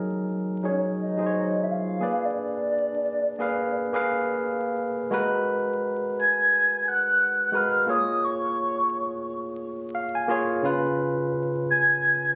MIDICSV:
0, 0, Header, 1, 3, 480
1, 0, Start_track
1, 0, Tempo, 689655
1, 1643, Time_signature, 4, 2, 24, 8
1, 8597, End_track
2, 0, Start_track
2, 0, Title_t, "Soft synth lead"
2, 0, Program_c, 0, 80
2, 465, Note_on_c, 0, 73, 82
2, 563, Note_off_c, 0, 73, 0
2, 705, Note_on_c, 0, 75, 95
2, 1136, Note_on_c, 0, 76, 77
2, 1146, Note_off_c, 0, 75, 0
2, 1187, Note_on_c, 0, 77, 99
2, 1197, Note_off_c, 0, 76, 0
2, 1565, Note_on_c, 0, 74, 103
2, 1576, Note_off_c, 0, 77, 0
2, 3095, Note_off_c, 0, 74, 0
2, 4309, Note_on_c, 0, 92, 120
2, 4788, Note_on_c, 0, 90, 110
2, 4798, Note_off_c, 0, 92, 0
2, 5265, Note_on_c, 0, 89, 100
2, 5275, Note_off_c, 0, 90, 0
2, 5500, Note_on_c, 0, 87, 105
2, 5510, Note_off_c, 0, 89, 0
2, 5738, Note_on_c, 0, 85, 90
2, 5748, Note_off_c, 0, 87, 0
2, 6690, Note_off_c, 0, 85, 0
2, 8147, Note_on_c, 0, 92, 121
2, 8597, Note_off_c, 0, 92, 0
2, 8597, End_track
3, 0, Start_track
3, 0, Title_t, "Tine electric piano"
3, 0, Program_c, 1, 4
3, 0, Control_c, 1, 64, 127
3, 0, Note_on_c, 1, 54, 80
3, 0, Note_on_c, 1, 63, 70
3, 0, Note_on_c, 1, 68, 73
3, 0, Note_on_c, 1, 70, 89
3, 312, Note_off_c, 1, 54, 0
3, 315, Note_off_c, 1, 63, 0
3, 320, Note_off_c, 1, 68, 0
3, 322, Note_off_c, 1, 70, 0
3, 435, Note_on_c, 1, 54, 62
3, 442, Note_on_c, 1, 63, 59
3, 448, Note_on_c, 1, 68, 59
3, 455, Note_on_c, 1, 73, 76
3, 736, Note_off_c, 1, 54, 0
3, 739, Note_off_c, 1, 63, 0
3, 742, Note_off_c, 1, 68, 0
3, 746, Note_off_c, 1, 73, 0
3, 814, Note_on_c, 1, 54, 65
3, 821, Note_on_c, 1, 63, 60
3, 827, Note_on_c, 1, 68, 58
3, 835, Note_on_c, 1, 72, 58
3, 866, Note_off_c, 1, 72, 0
3, 880, Note_on_c, 1, 73, 77
3, 1390, Note_off_c, 1, 68, 0
3, 1394, Note_on_c, 1, 58, 70
3, 1399, Note_on_c, 1, 68, 69
3, 1400, Note_off_c, 1, 54, 0
3, 1403, Note_off_c, 1, 63, 0
3, 1408, Note_on_c, 1, 71, 65
3, 1410, Control_c, 1, 64, 0
3, 1413, Note_on_c, 1, 74, 78
3, 1432, Note_off_c, 1, 73, 0
3, 1546, Control_c, 1, 64, 127
3, 2179, Note_off_c, 1, 58, 0
3, 2181, Note_off_c, 1, 68, 0
3, 2185, Note_off_c, 1, 71, 0
3, 2188, Note_off_c, 1, 74, 0
3, 2357, Note_on_c, 1, 58, 80
3, 2365, Note_on_c, 1, 68, 74
3, 2372, Note_on_c, 1, 71, 75
3, 2378, Note_on_c, 1, 77, 85
3, 2657, Note_off_c, 1, 58, 0
3, 2661, Note_off_c, 1, 68, 0
3, 2664, Note_off_c, 1, 71, 0
3, 2667, Note_off_c, 1, 77, 0
3, 2735, Note_on_c, 1, 58, 83
3, 2742, Note_on_c, 1, 68, 78
3, 2747, Note_on_c, 1, 71, 76
3, 2756, Note_on_c, 1, 77, 91
3, 3407, Note_off_c, 1, 58, 0
3, 3411, Note_off_c, 1, 68, 0
3, 3413, Note_off_c, 1, 71, 0
3, 3418, Note_off_c, 1, 77, 0
3, 3554, Note_on_c, 1, 56, 86
3, 3562, Note_on_c, 1, 66, 79
3, 3569, Note_on_c, 1, 70, 78
3, 3570, Control_c, 1, 64, 0
3, 3574, Note_on_c, 1, 71, 97
3, 3701, Control_c, 1, 64, 127
3, 4338, Note_off_c, 1, 56, 0
3, 4342, Note_off_c, 1, 66, 0
3, 4346, Note_off_c, 1, 70, 0
3, 4349, Note_off_c, 1, 71, 0
3, 5234, Note_on_c, 1, 56, 71
3, 5242, Note_on_c, 1, 66, 68
3, 5250, Note_on_c, 1, 70, 71
3, 5257, Note_on_c, 1, 71, 83
3, 5439, Note_off_c, 1, 56, 0
3, 5442, Note_off_c, 1, 66, 0
3, 5446, Note_off_c, 1, 70, 0
3, 5450, Note_off_c, 1, 71, 0
3, 5474, Note_on_c, 1, 58, 74
3, 5480, Note_on_c, 1, 65, 67
3, 5485, Note_on_c, 1, 68, 64
3, 5491, Control_c, 1, 64, 0
3, 5493, Note_on_c, 1, 73, 83
3, 5624, Control_c, 1, 64, 127
3, 6258, Note_off_c, 1, 58, 0
3, 6261, Note_off_c, 1, 65, 0
3, 6264, Note_off_c, 1, 68, 0
3, 6268, Note_off_c, 1, 73, 0
3, 6924, Note_on_c, 1, 77, 70
3, 7051, Note_off_c, 1, 77, 0
3, 7065, Note_on_c, 1, 80, 67
3, 7157, Note_on_c, 1, 58, 92
3, 7163, Note_on_c, 1, 65, 80
3, 7171, Note_on_c, 1, 68, 86
3, 7178, Note_on_c, 1, 73, 100
3, 7360, Note_off_c, 1, 58, 0
3, 7363, Note_off_c, 1, 65, 0
3, 7367, Note_off_c, 1, 68, 0
3, 7370, Note_off_c, 1, 73, 0
3, 7381, Note_off_c, 1, 80, 0
3, 7395, Note_on_c, 1, 49, 90
3, 7402, Note_on_c, 1, 61, 82
3, 7409, Note_on_c, 1, 65, 77
3, 7413, Control_c, 1, 64, 0
3, 7416, Note_on_c, 1, 71, 100
3, 7553, Control_c, 1, 64, 127
3, 8179, Note_off_c, 1, 49, 0
3, 8183, Note_off_c, 1, 61, 0
3, 8186, Note_off_c, 1, 65, 0
3, 8189, Note_off_c, 1, 71, 0
3, 8597, End_track
0, 0, End_of_file